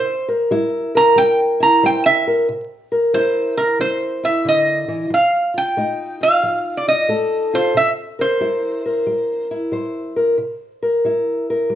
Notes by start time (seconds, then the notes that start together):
Already playing: C3 E4 C5
0.28 A#4
0.51 G3 E4
0.95 A#4 A#5
1.16 G3 G5
1.60 E4 A#5
1.83 G3 C5 G5
2.06 E5
2.27 A#4
2.49 C3
2.92 A#4
3.14 G3 E4 C5
3.57 E4 A#4
3.79 G3 C5
4.23 E4 E5
4.45 D3 D#5
4.88 E3
5.10 F3 F5
5.54 F4 G5
5.77 A3 D#4
6.21 F4 F5
6.43 F3
6.77 D5
6.88 D#4 D#5
7.08 A3 A4
7.53 F4 C5
7.74 C3 E5
8.19 A#4 C5
8.41 G3 E4
8.86 A#4
9.06 G3
9.51 E4
9.72 G3 C5
10.16 A#4
10.38 C3
10.82 A#4
11.05 G3 E4
11.50 A#4
11.70 G3